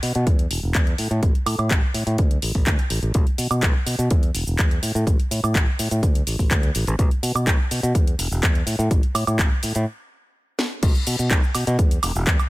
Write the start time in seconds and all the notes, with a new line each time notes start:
0.03 B2, open hi-hat
0.15 B2, closed hi-hat
0.27 E2, kick, closed hi-hat
0.39 closed hi-hat
0.51 E1, open hi-hat
0.63 E1
0.75 E2, kick, clap, closed hi-hat
0.87 closed hi-hat
0.98 A2, open hi-hat
1.11 A2, closed hi-hat
1.23 A1, kick, closed hi-hat
1.35 closed hi-hat
1.46 A2, open hi-hat, high woodblock
1.58 A2, closed hi-hat, high woodblock
1.71 A1, kick, clap, closed hi-hat
1.94 A2, open hi-hat
2.07 A2, closed hi-hat
2.18 D2, kick, closed hi-hat
2.31 closed hi-hat
2.42 A1, open hi-hat
2.55 kick, open hi-hat
2.66 D2, kick, clap, closed hi-hat
2.79 closed hi-hat
2.90 A1, open hi-hat
3.02 A1, closed hi-hat
3.14 B1, kick, closed hi-hat, cabasa
3.27 closed hi-hat
3.38 B2, open hi-hat, cabasa
3.50 B2, closed hi-hat, cabasa, high woodblock
3.62 B1, kick, clap, closed hi-hat, cabasa
3.86 B2, open hi-hat, cabasa
3.99 B2, closed hi-hat, cabasa
4.11 E2, kick, closed hi-hat, cabasa
4.23 closed hi-hat
4.34 E1, open hi-hat, cabasa
4.47 E1, cabasa
4.59 E2, kick, clap, closed hi-hat, cabasa
4.71 closed hi-hat
4.83 A2, open hi-hat, cabasa
4.95 A2, closed hi-hat, cabasa
5.07 A1, kick, closed hi-hat, cabasa
5.20 closed hi-hat
5.31 A2, open hi-hat, cabasa
5.43 A2, closed hi-hat, cabasa, high woodblock
5.55 A1, kick, clap, closed hi-hat, cabasa
5.79 A2, open hi-hat, cabasa
5.91 A2, closed hi-hat, cabasa
6.03 D2, kick, closed hi-hat, cabasa
6.15 closed hi-hat
6.27 A1, open hi-hat, cabasa
6.39 A1, kick, open hi-hat, cabasa
6.51 D2, kick, clap, closed hi-hat, cabasa
6.63 closed hi-hat
6.75 A1, open hi-hat, cabasa
6.87 A1, closed hi-hat, cabasa
6.99 B1, kick, closed hi-hat, cabasa
7.11 closed hi-hat
7.23 B2, open hi-hat, cabasa
7.35 B2, closed hi-hat, cabasa, high woodblock
7.47 B1, kick, clap, closed hi-hat, cabasa
7.71 B2, open hi-hat, cabasa
7.83 B2, closed hi-hat, cabasa
7.95 E2, kick, closed hi-hat, cabasa
8.07 closed hi-hat
8.19 E1, open hi-hat, cabasa
8.31 E1, cabasa
8.43 E2, kick, clap, closed hi-hat, cabasa
8.55 closed hi-hat
8.66 A2, open hi-hat, cabasa
8.79 A2, closed hi-hat, cabasa
8.91 A1, kick, closed hi-hat, cabasa
9.03 closed hi-hat
9.15 A2, open hi-hat, cabasa, high woodblock
9.27 A2, closed hi-hat, cabasa, high woodblock
9.39 A1, kick, clap, closed hi-hat, cabasa
9.63 A2, open hi-hat, cabasa
9.75 A2, closed hi-hat, cabasa
10.59 snare
10.83 B1, kick, closed hi-hat, crash, cabasa
10.95 closed hi-hat, cabasa
11.07 B2, open hi-hat, cabasa
11.19 B2, closed hi-hat, cabasa
11.31 B1, kick, clap, closed hi-hat, cabasa
11.44 cabasa
11.55 B2, open hi-hat, cabasa, high woodblock
11.67 B2, closed hi-hat, cabasa
11.79 E2, kick, closed hi-hat, cabasa
11.91 closed hi-hat, cabasa
12.03 E1, open hi-hat, cabasa, high woodblock
12.15 E1, cabasa
12.27 E2, kick, clap, closed hi-hat, cabasa
12.39 closed hi-hat, cabasa, high woodblock